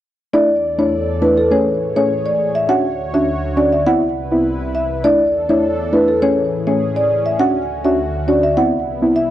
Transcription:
0.33 analog synth pad E2 E3 A4 D5, synth stab A3 D4 E4, marimba D5
0.78 synth stab A3 D4 E4, marimba C#5
1.21 synth stab A3 D4 E4, marimba B4
1.37 marimba A4
1.51 analog synth pad A2 G#4 C#5, synth stab A3 C#4 G#4, marimba C#5
1.96 synth stab A3 C#4 G#4, marimba C#5
2.26 marimba D5
2.55 marimba E5
2.69 analog synth pad D2 D3 F#4 C#5, synth stab C#4 D4 F#4, marimba F#5
3.14 synth stab C#4 D4 F#4, marimba E5
3.57 synth stab C#4 D4 F#4, marimba D5
3.73 marimba E5
3.86 analog synth pad C2 C3 E4 B4, synth stab B3 C4 E4, marimba F#5
4.31 synth stab B3 C4 E4
4.75 marimba E5
5.04 analog synth pad E2 E3 D4 A4, synth stab A3 D4 E4, marimba D5
5.49 synth stab A3 D4 E4, marimba C#5
5.92 synth stab A3 D4 E4, marimba B4
6.08 marimba A4
6.22 analog synth pad A2 C#4 G#4, synth stab A3 C#4 G#4, marimba C#5
6.67 synth stab A3 C#4 G#4, marimba C#5
6.96 marimba D5
7.26 marimba E5
7.39 analog synth pad D2 D3 F#4, synth stab C#4 D4 F#4, marimba F#5
7.84 synth stab C#4 D4 F#4, marimba E5
8.28 synth stab C#4 D4 F#4, marimba D5
8.43 marimba E5
8.57 analog synth pad C2 C3 B3 E4, synth stab B3 C4 E4, marimba F#5
9.02 synth stab B3 C4 E4
9.16 marimba E5

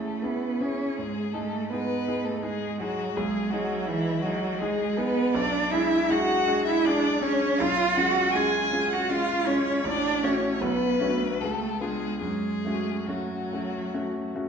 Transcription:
Already playing: grand piano E2 C#4 E4 G#4, cello A3, violin A4
0.23 cello B3, grand piano C#4 E4 G#4, violin B4
0.60 grand piano C#4 E4 G#4, cello C#4, violin C#5
0.97 grand piano G#2, cello G#3, violin G#4
1.32 grand piano G#3 D#4 G#4, cello A3, violin A4
1.70 grand piano G#3 D#4 G#4, cello B3, violin B4
2.08 grand piano G#3 D#4 G#4
2.25 cello A3, violin A4
2.42 cello G#3, grand piano G#3 D#4 G#4, violin G#4
2.79 cello F#3, grand piano G#3 D#4 G#4, violin F#4
3.15 grand piano B1, cello G#3, violin G#4
3.50 cello F#3, grand piano G#3 D#4 G#4, violin F#4
3.86 cello E3, grand piano G#3 D#4 G#4, violin E4
4.22 cello F#3, grand piano G#3 D#4 G#4, violin F#4
4.58 grand piano G#3 D#4 G#4, cello G#3, violin G#4
4.97 grand piano G#3 D#4 G#4, cello B3, violin B4
5.35 grand piano B1, cello D4, violin D5
5.71 grand piano G#3 D4 G#4, cello E4, violin E5
6.09 grand piano G#3 D4 G#4, cello F#4, violin F#5
6.48 grand piano G#3 D4 G#4
6.66 cello E4, violin E5
6.85 grand piano G#3 D4 G#4, cello D4, violin D5
7.22 grand piano G#3 D4 G#4, cello C#4, violin C#5
7.59 grand piano B1, cello F4, violin F5
7.96 grand piano G#3 C#4 F4, cello F#4, violin F#5
8.31 grand piano G#3 C#4 F4, cello G#4, violin G#5
8.73 grand piano G#3 C#4 F4
8.91 cello F#4, violin F#5
9.08 grand piano G#3 C#4 F4, cello F4, violin F5
9.47 grand piano G#3 C#4 F4, cello C#4, violin C#5
9.85 grand piano A1, cello D4, violin D5
10.23 grand piano A3 C#4 F#4, cello C#4, violin C#5
10.60 grand piano B1, cello B3, violin B4
11.00 grand piano A3 D4 F#4, cello C#4
11.09 cello B3
11.20 cello A3
11.32 cello B3
11.40 grand piano C#2, cello A3, violin A4
11.81 cello G#3, grand piano B3 D4 F4, violin G#4
12.21 grand piano F#2, cello G#3, violin G#4
12.65 grand piano A3 C#4 F#4
13.06 cello F#3, grand piano A3 C#4 F#4, violin F#4
13.53 grand piano A3 C#4 F#4
13.94 grand piano A3 C#4 F#4
14.35 grand piano A3 C#4 F#4

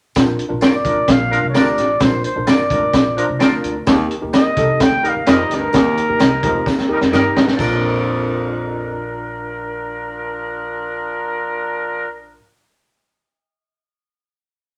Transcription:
0.15 upright bass A#1, tine electric piano D4 F4 A#4, kick, snare, closed hi-hat, tambourine
0.39 closed hi-hat
0.49 upright bass A#1, tine electric piano D4 F4 A#4
0.61 upright bass G1, clean electric guitar F4 A#4 D5, snare, closed hi-hat, tambourine
0.66 trumpet D5
0.84 upright bass A1, horn section F3 D4 A#4, tine electric piano D4 F4 A#4, kick, closed hi-hat
1.08 upright bass A#1, trumpet F5, kick, snare, closed hi-hat, tambourine
1.31 horn section F3 D4 A#4, tine electric piano D4 F4 A#4, closed hi-hat
1.43 upright bass C2
1.49 trumpet C#5
1.53 upright bass D2, horn section F3 D4 A#4, tine electric piano D4 F4 G4, clean electric guitar F4 A#4 D5, trumpet D5, snare, closed hi-hat, tambourine
1.77 upright bass A1, snare, closed hi-hat
2.00 upright bass A#1, tine electric piano D4 F4 A#4, trumpet C5, kick, snare, closed hi-hat, tambourine
2.24 trumpet C5, closed hi-hat
2.36 upright bass A#1, tine electric piano D4 F4 A#4
2.47 upright bass G1, clean electric guitar F4 A#4 D5, trumpet D5, snare, closed hi-hat, tambourine
2.70 upright bass A1, horn section F3 D4 A#4, tine electric piano D4 F4 A#4, kick, closed hi-hat
2.93 upright bass A#1, kick, snare, closed hi-hat, tambourine
3.16 horn section F3 D4 A#4, tine electric piano D4 F4 C5, closed hi-hat
3.29 upright bass C2
3.39 upright bass D2, horn section F3 D4 A#4, tine electric piano D4 F4 A#4, clean electric guitar F4 A#4 D5, snare, closed hi-hat, tambourine
3.64 upright bass D2, closed hi-hat
3.86 upright bass D#2, baritone saxophone D#2, tine electric piano D#4 G4 A#4, kick, snare, closed hi-hat, tambourine
4.11 closed hi-hat
4.22 upright bass D#2, tine electric piano D#4 G4 A#4
4.33 clean electric guitar G4 A#4 D#5, trumpet D#5, snare, closed hi-hat, tambourine
4.57 upright bass C2, horn section G3 D#4 A#4, tine electric piano D#4 G4 A4, kick, closed hi-hat
4.80 upright bass D2, trumpet G5, kick, snare, closed hi-hat, tambourine
5.03 horn section G3 D#4 A#4, tine electric piano D#4 G4 A#4, closed hi-hat
5.08 trumpet F5
5.15 upright bass D#2
5.26 upright bass F2, baritone saxophone F2, horn section G3 D#4 A#4, tine electric piano D#4 G4 A#4, clean electric guitar G4 A#4 D#5, snare, closed hi-hat, tambourine
5.31 trumpet D#5
5.50 upright bass D2, baritone saxophone G2, snare, closed hi-hat
5.55 trumpet A#4
5.73 baritone saxophone D#2, upright bass D#2, tine electric piano D#4 G4 A#4, kick, snare, closed hi-hat, tambourine
5.97 closed hi-hat
6.09 upright bass D#2, tine electric piano D#4 G4 A#4
6.19 upright bass C2, clean electric guitar G4 A#4 D#5, snare, closed hi-hat, tambourine
6.43 upright bass D2, baritone saxophone F2, horn section G3 D#4 A#4, tine electric piano D#4 G4 A#4, kick, closed hi-hat
6.66 upright bass D#2, kick, snare, tambourine
6.79 snare
6.89 horn section G3 D#4 A#4, tine electric piano D#4 G4 A#4
7.01 upright bass F2, snare
7.12 upright bass G2, horn section G3 D#4 A#4, tine electric piano D#4 F#4 A#4, clean electric guitar G4 A#4 D#5, snare, tambourine
7.17 tine electric piano G4
7.36 upright bass A1, baritone saxophone G2, clean electric guitar G4 A#4 D#5, snare
7.48 snare
7.57 upright bass A#1, baritone saxophone F2, horn section F3 D4, tine electric piano D4 F4, clean electric guitar F4 A#4, kick, crash, tambourine
7.61 horn section A#4, tine electric piano A#4, clean electric guitar D5

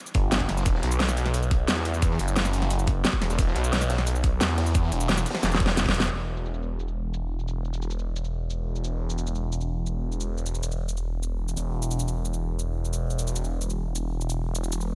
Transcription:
0.06 shaker
0.14 detuned saw bass G1, kick, closed hi-hat
0.31 snare, closed hi-hat, shaker
0.40 kick, snare
0.49 detuned saw bass F#1, snare, closed hi-hat
0.57 snare, closed hi-hat, shaker
0.66 detuned saw bass E1, kick, closed hi-hat, shaker
0.75 snare
0.83 detuned saw bass B1, snare, closed hi-hat
0.92 closed hi-hat, shaker
0.99 snare, closed hi-hat, open hi-hat, shaker
1.08 snare, closed hi-hat, shaker
1.17 closed hi-hat, shaker
1.26 snare, closed hi-hat
1.34 closed hi-hat, shaker
1.43 shaker
1.51 kick, closed hi-hat
1.68 detuned saw bass E2, snare, closed hi-hat, shaker
1.76 snare
1.85 closed hi-hat
1.94 shaker
2.02 kick, closed hi-hat, shaker
2.11 snare
2.19 detuned saw bass F#1, closed hi-hat, shaker
2.28 closed hi-hat, shaker
2.36 snare, closed hi-hat, shaker
2.45 snare, shaker
2.53 closed hi-hat, shaker
2.62 snare, closed hi-hat
2.71 closed hi-hat, shaker
2.79 shaker
2.87 kick, closed hi-hat
3.05 snare, closed hi-hat, shaker
3.13 kick, snare
3.22 detuned saw bass E1, snare, closed hi-hat
3.30 snare, closed hi-hat, shaker
3.39 detuned saw bass E1, kick, closed hi-hat, shaker
3.47 snare
3.55 detuned saw bass B1, snare, closed hi-hat
3.64 closed hi-hat, shaker
3.73 snare, closed hi-hat, open hi-hat, shaker
3.81 snare, closed hi-hat, shaker
3.89 snare, closed hi-hat, open hi-hat, shaker
3.98 snare, closed hi-hat
4.07 closed hi-hat, shaker
4.15 shaker
4.23 kick, closed hi-hat
4.40 detuned saw bass E2, snare, closed hi-hat, shaker
4.49 snare
4.58 snare, closed hi-hat, open hi-hat
4.66 shaker
4.74 kick, closed hi-hat, shaker
4.83 snare
4.92 detuned saw bass E1, closed hi-hat, shaker
5.01 closed hi-hat, shaker
5.09 snare, closed hi-hat, shaker
5.18 snare, shaker
5.26 closed hi-hat, open hi-hat, shaker
5.30 snare, open hi-hat
5.34 snare, closed hi-hat, open hi-hat
5.39 snare, open hi-hat
5.43 detuned saw bass E1, snare, closed hi-hat, shaker
5.52 snare, shaker
5.60 kick, closed hi-hat
5.66 snare
5.68 snare, closed hi-hat
5.77 snare, closed hi-hat, shaker
5.86 kick, snare, closed hi-hat
5.94 closed hi-hat
6.00 snare, closed hi-hat, shaker
6.03 snare
6.11 detuned saw bass E1, shaker
6.37 shaker
6.45 shaker
6.54 shaker
6.63 shaker
6.80 shaker
6.88 shaker
7.14 shaker
7.39 shaker
7.48 shaker
7.65 shaker
7.73 shaker
7.82 shaker
7.90 shaker
7.99 shaker
8.16 shaker
8.25 shaker
8.50 shaker
8.76 shaker
8.84 shaker
9.10 shaker
9.18 shaker
9.27 shaker
9.35 shaker
9.52 shaker
9.61 shaker
9.86 shaker
10.12 shaker
10.20 shaker
10.37 shaker
10.46 shaker
10.55 shaker
10.63 shaker
10.72 shaker
10.89 shaker
10.97 shaker
11.23 shaker
11.48 shaker
11.57 detuned saw bass E1, shaker
11.82 shaker
11.91 shaker
11.99 shaker
12.08 shaker
12.25 shaker
12.34 shaker
12.59 shaker
12.85 shaker
12.93 shaker
13.10 shaker
13.19 shaker
13.27 shaker
13.36 shaker
13.44 shaker
13.61 shaker
13.70 shaker
13.95 shaker
14.21 shaker
14.30 shaker
14.55 shaker
14.64 shaker
14.72 shaker
14.81 shaker

